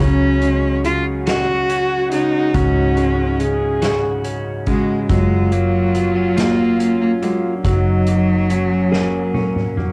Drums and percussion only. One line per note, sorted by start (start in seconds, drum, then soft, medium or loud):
0.41 closed hi-hat soft
0.84 closed hi-hat soft
1.27 snare loud
1.27 closed hi-hat loud
1.69 closed hi-hat medium
2.12 closed hi-hat soft
2.54 kick loud
2.54 closed hi-hat medium
2.97 closed hi-hat soft
3.40 closed hi-hat soft
3.82 snare loud
3.82 closed hi-hat loud
4.24 closed hi-hat medium
4.66 kick medium
4.66 closed hi-hat medium
5.09 kick loud
5.09 closed hi-hat medium
5.52 closed hi-hat soft
5.94 closed hi-hat soft
6.37 snare loud
6.37 closed hi-hat loud
6.80 closed hi-hat medium
7.22 closed hi-hat soft
7.65 kick loud
7.65 closed hi-hat medium
8.07 closed hi-hat soft
8.50 closed hi-hat soft
8.93 snare medium
9.34 high tom medium
9.56 mid tom medium
9.77 mid tom medium